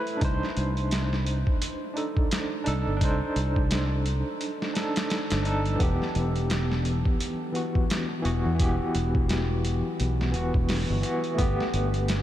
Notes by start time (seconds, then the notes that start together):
Already playing: A3 E4 B4
0.07 closed hi-hat
0.17 D4 D#4
0.21 C2 C5, kick, closed hi-hat
0.43 snare
0.57 C2, closed hi-hat
0.77 closed hi-hat
0.91 snare, closed hi-hat
1.13 snare
1.27 closed hi-hat
1.47 kick
1.62 closed hi-hat
1.94 D4 D#4 A4, closed hi-hat
2.17 kick
2.31 snare, closed hi-hat
2.64 C2 D4 D#4 A4, closed hi-hat
2.87 G1
2.97 D4 D#4
3.01 C2 C5, kick, closed hi-hat
3.36 C2, closed hi-hat
3.56 kick
3.71 snare, closed hi-hat
4.06 closed hi-hat
4.41 closed hi-hat
4.62 snare
4.74 D4 D#4 A4, snare, closed hi-hat
4.96 snare, closed hi-hat
5.10 snare, closed hi-hat
5.30 G1, snare, closed hi-hat
5.43 D4 D#4, closed hi-hat
5.47 A4
5.66 closed hi-hat
5.75 E3 B3
5.80 E1 G4, kick, closed hi-hat
6.02 snare
6.15 E1, closed hi-hat
6.36 closed hi-hat
6.50 snare, closed hi-hat
6.72 snare
6.85 closed hi-hat
7.05 kick
7.20 closed hi-hat
7.52 E3 B3 F#4, closed hi-hat
7.75 kick
7.90 snare, closed hi-hat
8.22 E1 E3 B3 F#4, closed hi-hat
8.45 E2
8.55 E3 B3
8.60 E1 G4, kick, closed hi-hat
8.95 E1, closed hi-hat
9.15 kick
9.29 snare, closed hi-hat
9.65 closed hi-hat
10.00 B1, closed hi-hat
10.21 snare
10.32 E1 E3 B3, closed hi-hat
10.36 F#4
10.54 E1, kick
10.69 snare, open hi-hat
10.90 G1
11.02 E3 B3 F#4, closed hi-hat
11.24 closed hi-hat
11.35 A3 B3, kick, closed hi-hat
11.39 G1 G4
11.60 snare
11.74 G1, closed hi-hat
11.94 closed hi-hat
12.08 snare, closed hi-hat